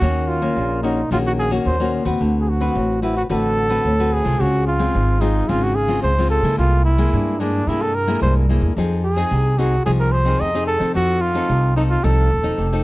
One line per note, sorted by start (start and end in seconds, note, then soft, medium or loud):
0.00 0.48 D#2 medium
0.00 0.54 D#3 medium
0.00 0.38 A#3 soft
0.00 0.39 C#4 medium
0.00 0.30 F#4 medium
0.00 0.39 F#4 medium
0.28 0.82 F4 medium
0.42 0.79 A#3 medium
0.42 0.79 C#4 medium
0.56 1.03 A#1 medium
0.56 1.09 A#2 medium
0.83 1.00 A#3 medium
0.83 1.00 C#4 medium
0.83 1.09 D#4 medium
0.83 1.00 F#4 medium
1.11 1.58 A#1 medium
1.11 1.64 D#3 medium
1.11 1.48 A#3 medium
1.11 1.48 C#4 medium
1.11 1.18 F4 medium
1.11 1.49 F#4 medium
1.27 1.32 F#4 medium
1.39 1.51 G#4 medium
1.51 1.75 A#3 medium
1.51 1.75 C#4 medium
1.51 1.75 F#4 medium
1.65 2.01 D#2 medium
1.65 2.18 A#2 soft
1.65 1.92 C5 medium
1.80 2.03 A#3 medium
1.80 2.03 C#4 medium
1.80 2.03 F#4 medium
2.05 2.18 D#2 medium
2.05 2.57 C4 medium
2.05 2.57 F#4 medium
2.05 2.57 B4 medium
2.21 2.67 D2 medium
2.21 2.73 D3 medium
2.41 2.50 G#4 medium
2.49 3.02 F#4 medium
2.60 2.98 C4 medium
2.60 2.98 F#4 medium
2.60 2.98 B4 medium
2.75 3.22 A1 medium
2.75 3.27 A2 medium
3.02 3.26 C4 medium
3.02 3.16 E4 medium
3.02 3.26 F#4 soft
3.02 3.26 B4 medium
3.17 3.23 F#4 medium
3.29 3.76 A1 medium
3.29 3.82 D3 medium
3.29 3.67 C4 medium
3.29 3.67 F#4 soft
3.29 4.14 A4 medium
3.29 3.67 B4 medium
3.69 3.93 C4 medium
3.69 3.94 F#4 medium
3.69 3.94 B4 medium
3.85 4.20 D2 medium
3.85 4.37 A2 medium
3.99 4.22 C4 soft
3.99 4.22 F#4 medium
3.99 4.22 B4 medium
4.13 4.43 G#4 medium
4.24 4.37 C2 medium
4.24 4.75 G#3 medium
4.24 4.76 C4 medium
4.24 4.76 F4 medium
4.40 4.86 C#2 medium
4.40 4.92 C#3 medium
4.40 4.67 F#4 medium
4.67 5.22 F4 medium
4.79 5.17 G#3 medium
4.79 5.17 C4 medium
4.79 5.17 F4 medium
4.94 5.41 G#1 medium
4.94 5.46 G#2 soft
5.21 5.44 G#3 medium
5.21 5.44 C4 soft
5.21 5.50 D#4 medium
5.21 5.45 F4 medium
5.49 5.96 G#1 medium
5.49 6.01 C#3 soft
5.49 5.74 G#3 soft
5.49 5.75 C4 soft
5.49 5.65 F4 medium
5.49 5.75 F4 medium
5.63 5.76 F#4 medium
5.75 6.02 G#4 medium
5.88 6.12 G#3 medium
5.88 6.12 C4 medium
5.88 6.12 F4 medium
6.03 6.38 C#2 medium
6.03 6.56 G#2 soft
6.03 6.29 C5 medium
6.18 6.41 G#3 medium
6.18 6.41 C4 medium
6.18 6.41 F4 medium
6.30 6.56 A4 medium
6.43 6.55 C#3 medium
6.43 6.94 G#3 medium
6.43 6.95 A#3 medium
6.43 6.95 E4 medium
6.58 7.05 C2 medium
6.58 7.10 C3 medium
6.58 6.83 F4 medium
6.85 7.41 E4 medium
6.98 7.35 G#3 medium
6.98 7.35 A#3 medium
6.98 7.36 E4 medium
7.13 7.59 G2 medium
7.13 7.65 G2 soft
7.39 7.63 G#3 medium
7.39 7.63 A#3 soft
7.39 7.69 D4 medium
7.39 7.63 E4 medium
7.67 8.13 G2 medium
7.67 8.20 C3 medium
7.67 7.93 G#3 soft
7.67 7.94 A#3 medium
7.67 7.83 E4 medium
7.67 7.94 E4 medium
7.82 7.96 A4 medium
7.94 8.22 A#4 medium
8.07 8.44 G#3 medium
8.07 8.45 A#3 medium
8.07 8.45 E4 medium
8.22 8.57 C2 medium
8.22 8.74 G2 medium
8.22 8.34 C5 medium
8.49 8.72 G#3 medium
8.49 8.72 A#3 medium
8.49 8.73 E4 medium
8.62 8.74 E2 medium
8.77 9.23 F2 medium
8.77 9.29 F3 medium
8.77 9.03 C4 medium
8.77 9.03 D#4 medium
8.77 9.03 G#4 medium
9.05 9.60 G#4 medium
9.16 9.54 C4 medium
9.16 9.54 D#4 medium
9.16 9.54 G#4 medium
9.31 9.77 C2 medium
9.31 9.83 C3 medium
9.58 9.74 C4 medium
9.58 9.75 D#4 soft
9.58 9.85 F#4 medium
9.58 9.75 G#4 medium
9.86 10.32 C2 medium
9.86 10.38 F3 medium
9.86 10.12 C4 soft
9.86 10.12 D#4 soft
9.86 9.92 G#4 medium
9.86 10.12 G#4 medium
10.00 10.13 A#4 medium
10.12 10.42 C5 medium
10.25 10.49 C4 medium
10.25 10.49 D#4 medium
10.25 10.49 G#4 medium
10.40 10.75 F2 medium
10.40 10.92 C3 soft
10.40 10.66 D#5 medium
10.54 10.77 C4 medium
10.54 10.77 D#4 medium
10.54 10.77 G#4 medium
10.67 10.93 A4 medium
10.80 10.92 F3 medium
10.80 11.31 C4 medium
10.80 11.31 D#4 medium
10.80 11.31 A4 medium
10.95 11.41 F2 medium
10.95 11.47 F3 medium
10.95 11.23 F#4 medium
11.21 11.76 F4 medium
11.34 11.72 C4 medium
11.34 11.72 D#4 medium
11.34 11.72 A4 medium
11.49 11.96 C2 medium
11.49 12.01 C3 medium
11.76 11.99 C4 soft
11.76 11.82 D#4 medium
11.76 12.00 D#4 medium
11.76 12.00 A4 medium
11.89 12.05 F4 medium
12.04 12.27 C2 medium
12.04 12.56 F3 medium
12.04 12.29 C4 medium
12.04 12.30 D#4 soft
12.04 12.84 A4 medium
12.04 12.30 A4 medium
12.30 12.55 D#1 medium
12.43 12.67 C4 medium
12.43 12.67 D#4 medium
12.43 12.67 A4 medium
12.58 12.83 F1 medium
12.58 12.84 C3 soft
12.72 12.84 C4 medium
12.72 12.84 D#4 medium
12.72 12.84 A4 medium